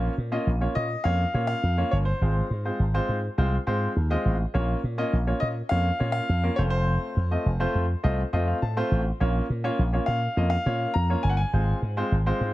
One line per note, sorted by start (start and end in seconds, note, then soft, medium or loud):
0.00 0.12 A#3 medium
0.00 0.12 C#4 medium
0.00 0.13 F4 medium
0.00 0.13 C#5 medium
0.18 0.37 A#2 loud
0.32 0.48 A#3 medium
0.32 0.48 C#4 medium
0.32 0.48 F4 medium
0.32 0.48 D#5 medium
0.47 0.66 A#1 loud
0.61 0.85 A#3 medium
0.61 0.85 C#4 medium
0.61 0.85 F4 medium
0.61 0.86 C#5 medium
0.75 0.95 A#2 loud
0.75 1.06 D#5 medium
1.04 1.24 F2 loud
1.04 1.21 A#3 medium
1.04 1.21 C#4 medium
1.04 1.21 F4 medium
1.04 1.21 C#5 medium
1.04 1.46 F5 loud
1.34 1.53 A#2 loud
1.34 1.58 A#3 medium
1.34 1.58 C#4 medium
1.34 1.58 F4 medium
1.34 1.59 C#5 medium
1.47 1.93 F5 loud
1.63 1.82 F2 medium
1.78 2.02 A#3 medium
1.78 2.02 C#4 medium
1.78 2.02 F4 medium
1.78 2.02 C#5 medium
1.91 2.11 G1 medium
1.91 1.96 C#5 medium
2.05 4.21 C5 medium
2.21 2.40 G#1 loud
2.21 2.46 G#3 medium
2.21 2.46 C4 medium
2.21 2.46 F4 medium
2.21 2.46 C5 medium
2.50 2.69 G#2 loud
2.65 2.81 G#3 medium
2.65 2.81 C4 medium
2.65 2.81 F4 medium
2.65 2.81 C5 medium
2.79 2.98 G#1 medium
2.94 3.18 G#3 medium
2.94 3.18 C4 medium
2.94 3.19 F4 medium
2.94 3.19 C5 loud
3.09 3.28 G#2 loud
3.38 3.57 C2 medium
3.38 3.54 G#3 medium
3.38 3.54 C4 medium
3.38 3.54 F4 medium
3.38 3.54 C5 medium
3.67 3.86 G#2 medium
3.67 3.91 G#3 medium
3.67 3.91 C4 medium
3.67 3.91 F4 medium
3.67 3.91 C5 medium
3.96 4.15 D#2 loud
4.10 4.35 G#3 medium
4.10 4.35 C4 medium
4.10 4.35 F4 medium
4.10 4.35 D#5 loud
4.25 4.44 A1 medium
4.54 4.73 A#1 medium
4.54 4.78 A#3 medium
4.54 4.78 C#4 medium
4.54 4.79 F4 medium
4.54 4.79 C#5 medium
4.84 5.03 A#2 loud
4.98 5.14 A#3 medium
4.98 5.14 C#4 medium
4.98 5.14 F4 medium
4.98 5.14 D#5 loud
5.13 5.32 A#1 loud
5.27 5.51 A#3 medium
5.27 5.51 C#4 medium
5.27 5.51 F4 medium
5.27 5.52 C#5 medium
5.40 5.61 A#2 loud
5.40 5.47 D#5 medium
5.69 5.90 F2 medium
5.69 5.87 A#3 medium
5.69 5.87 C#4 medium
5.69 5.87 F4 medium
5.69 5.87 C#5 medium
5.69 6.11 F5 loud
6.00 6.19 A#2 medium
6.00 6.24 A#3 medium
6.00 6.24 C#4 medium
6.00 6.24 F4 medium
6.00 6.24 C#5 medium
6.12 6.54 F5 loud
6.29 6.48 F2 loud
6.43 6.58 A#3 medium
6.43 6.58 C#4 medium
6.43 6.57 F4 medium
6.43 6.58 A#4 medium
6.56 6.96 F1 medium
6.56 7.16 A3 medium
6.56 7.17 C4 medium
6.56 7.17 F4 medium
6.56 7.17 C5 medium
6.56 6.61 C#5 medium
6.70 8.86 C5 loud
7.17 7.36 F2 loud
7.31 7.47 A3 medium
7.31 7.47 C4 medium
7.31 7.47 F4 medium
7.31 7.47 D#5 medium
7.46 7.65 F1 loud
7.60 7.84 A3 medium
7.60 7.84 C4 medium
7.60 7.84 F4 medium
7.60 7.84 C5 loud
7.75 7.94 F2 loud
8.03 8.23 C2 medium
8.03 8.20 A3 medium
8.03 8.20 C4 medium
8.03 8.20 F4 medium
8.03 8.20 D#5 loud
8.33 8.52 F2 medium
8.33 8.57 A3 medium
8.33 8.57 C4 medium
8.33 8.57 F4 medium
8.33 8.57 D#5 medium
8.48 8.61 F5 medium
8.62 8.81 A2 medium
8.62 8.76 A5 medium
8.77 9.01 A3 medium
8.77 9.01 C4 medium
8.77 9.01 F4 medium
8.77 9.01 C5 loud
8.77 9.17 C6 medium
8.91 9.10 A1 medium
9.20 9.39 A#1 loud
9.20 9.45 A#3 medium
9.20 9.45 C#4 medium
9.20 9.45 F4 medium
9.20 9.45 C#5 medium
9.50 9.69 A#2 loud
9.64 9.80 A#3 medium
9.64 9.80 C#4 medium
9.64 9.80 F4 medium
9.64 9.80 C#5 loud
9.79 9.98 A#1 loud
9.93 10.17 A#3 medium
9.93 10.17 C#4 medium
9.93 10.18 F4 medium
9.93 10.18 C#5 medium
10.06 10.27 A#2 medium
10.06 10.48 F5 medium
10.37 10.56 F2 loud
10.37 10.53 A#3 medium
10.37 10.53 C#4 medium
10.37 10.53 F4 medium
10.37 10.53 D#5 medium
10.50 10.96 F5 loud
10.66 10.85 A#2 loud
10.66 10.90 A#3 medium
10.66 10.90 C#4 medium
10.66 10.90 F4 medium
10.66 10.90 C#5 medium
10.94 11.14 F2 medium
10.94 11.25 A#5 loud
11.10 11.34 A#3 medium
11.10 11.34 C#4 medium
11.10 11.34 F4 medium
11.10 11.34 C#5 medium
11.23 11.43 G1 medium
11.23 11.30 G#5 medium
11.29 11.37 F#5 medium
11.37 11.79 G#5 medium
11.53 11.72 G#1 loud
11.53 11.78 G#3 medium
11.53 11.78 C4 medium
11.53 11.78 F4 medium
11.53 11.78 C5 medium
11.82 12.01 G#2 loud
11.97 12.13 G#3 medium
11.97 12.13 C4 medium
11.97 12.13 F4 medium
11.97 12.13 C5 loud
12.12 12.31 G#1 loud
12.26 12.50 G#3 medium
12.26 12.50 C4 medium
12.26 12.51 F4 medium
12.26 12.51 C5 loud
12.41 12.54 G#2 loud